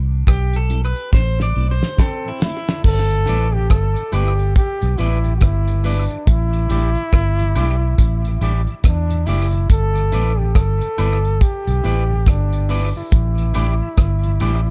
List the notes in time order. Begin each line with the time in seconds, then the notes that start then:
Already playing: C2
0.27 B1 G4, kick, cross-stick, closed hi-hat
0.53 C3 A4, closed hi-hat
0.69 G3 C4 E4, closed hi-hat, tambourine
0.85 B4
0.96 closed hi-hat
1.13 A1 C5, kick, snare
1.39 A2 E3 D5, snare
1.55 B1 A3 C4 E4, tambourine
1.71 C5
1.81 A2 E3, snare
1.98 C4 A4, kick, snare, high woodblock
2.25 A2 E3 E4
2.40 A3 C4 E4, snare, tambourine
2.69 snare
2.84 G1 A4, kick, crash
3.10 G2 D3, closed hi-hat
3.27 A1 G3 B3 E4 B4 D5, closed hi-hat, tambourine
3.52 G2 D3 G4
3.70 G1 A4, kick, cross-stick, closed hi-hat
3.96 G2 D3, closed hi-hat
4.12 G1 G3 B3 E4 G4 B4 D5, closed hi-hat, tambourine, high woodblock
4.39 closed hi-hat
4.56 G4, kick, closed hi-hat
4.81 B1 G2 D3, closed hi-hat
4.98 A1 G3 B3 E4 B4 D5, closed hi-hat, tambourine
5.24 G2 D3, closed hi-hat
5.38 G1 F#4, kick, closed hi-hat
5.42 E4, cross-stick
5.68 G2 D3, closed hi-hat
5.84 G3 B3 D4 E4 B4 D5, open hi-hat, tambourine
6.10 G2 D3, closed hi-hat
6.27 A1 E4, kick, closed hi-hat
6.53 A2 E3, closed hi-hat
6.69 A1 G3 A3 D4 E4 G4 D5, closed hi-hat, tambourine
6.95 A2 E3, closed hi-hat
7.13 G1, kick, cross-stick, closed hi-hat
7.39 A2 E3, closed hi-hat
7.55 B1 G3 A3 D4 E4 G4 D5, closed hi-hat, tambourine, high woodblock
7.98 A1, kick, closed hi-hat
8.24 A2 E3, closed hi-hat
8.41 A1 G3 A3 D4 E4 G4 D5, closed hi-hat, tambourine
8.67 A2 E3, closed hi-hat
8.84 E2 D4, kick, cross-stick, closed hi-hat
9.10 A2 E3, closed hi-hat
9.26 F#1 G3 A3 D4 E4 G4 D5, open hi-hat, tambourine
9.52 A2 E3, muted clean electric guitar stroke, closed hi-hat
9.70 G1 A4, kick, closed hi-hat
9.95 G2 D3, closed hi-hat
10.12 A1 G3 B3 E4 B4 D5, closed hi-hat, tambourine
10.39 G2 D3 G4
10.55 G1 A4, kick, cross-stick, closed hi-hat
10.81 G2 D3, closed hi-hat
10.98 G1 G3 B3 E4 B4 D5, closed hi-hat, tambourine, high woodblock
11.24 closed hi-hat
11.41 G4, kick, closed hi-hat
11.67 B1 G2 D3, closed hi-hat
11.84 A1 G3 B3 E4 B4 D5, closed hi-hat, tambourine
12.09 G2 D3
12.26 G1 D4, kick, cross-stick, closed hi-hat
12.53 G2 D3, closed hi-hat
12.69 G3 B3 E4 B4 D5, open hi-hat, tambourine
12.96 G2 D3 E4
13.12 A1, kick, closed hi-hat
13.38 A2 E3, closed hi-hat
13.54 A1 G3 A3 D4 E4 G4 D5, closed hi-hat, tambourine, high woodblock
13.81 A2 E3
13.97 G1, kick, cross-stick, closed hi-hat
14.23 A2 E3, closed hi-hat
14.40 A1 G3 A3 D4 E4 G4 D5, closed hi-hat, tambourine, high woodblock